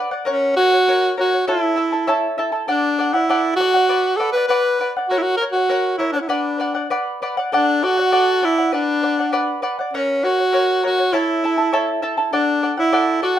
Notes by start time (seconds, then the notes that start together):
Already playing: B4 D5 F#5
0.11 D5 F#5
0.25 C#4 A#4 C#5 F#5
0.56 F#4 A#4 C#5 F#5
0.71 C#5 F#5
0.88 A#4 C#5 F#5
1.17 F#4 A#4 C#5 F#5
1.32 C#5 F#5
1.47 E4 A4 C#5 E5 A5
1.76 E4 A4 E5 A5
1.92 E4 A4 A5
2.07 E4 A4 C#5 E5 A5
2.38 E4 A4 E5 A5
2.52 E4 A4 A5
2.68 D4 A4 D5 F#5
2.99 A4 D5 F#5
3.13 E4 D5 F#5
3.29 A4 D5 F#5
3.56 F#4 A4
3.60 D5 F#5
3.74 D5 F#5
3.89 B4 D5 F#5
4.17 A4 B4 D5 F#5
4.32 B4 F#5
4.37 D5
4.48 B4 D5 F#5
4.79 B4 D5 F#5
4.97 D5 F#5
5.09 F#4 A#4 C#5 F#5
5.18 E4
5.22 F#4
5.37 A#4
5.41 C#5 F#5
5.52 F#4 F#5
5.56 C#5
5.69 A#4 C#5 F#5
5.98 E4 A#4 C#5 F#5
6.12 D4 C#5 F#5
6.21 E4
6.28 D4 B4 D5 F#5
6.58 B4 D5 F#5
6.75 D5 F#5
6.90 B4 D5 F#5
7.22 B4 D5 F#5
7.37 D5 F#5
7.52 D4 A4 D5 F#5
7.83 F#4 A4 D5 F#5
7.98 D5 F#5
8.12 A4 D5 F#5
8.42 E4 A4 D5 F#5
8.58 D5 F#5
8.72 D4 B4 D5 F#5
9.03 B4 D5 F#5
9.19 D5 F#5
9.32 B4 D5 F#5
9.62 B4 D5 F#5
9.79 D5 F#5
9.93 C#4 A#4 C#5 F#5
10.23 F#4 A#4 C#5 F#5
10.39 C#5 F#5
10.52 A#4 C#5 F#5
10.83 F#4 A#4 C#5 F#5
10.98 C#5 F#5
11.13 E4 A4 C#5 E5 A5
11.44 E4 A4 E5 A5
11.57 E4 A4 A5
11.73 E4 A4 C#5 E5 A5
12.02 E4 A4 E5 A5
12.17 E4 A4 A5
12.33 D4 A4 D5 F#5
12.63 A4 D5 F#5
12.77 E4 D5 F#5
12.93 A4 D5 F#5
13.22 F#4 A4 D5 F#5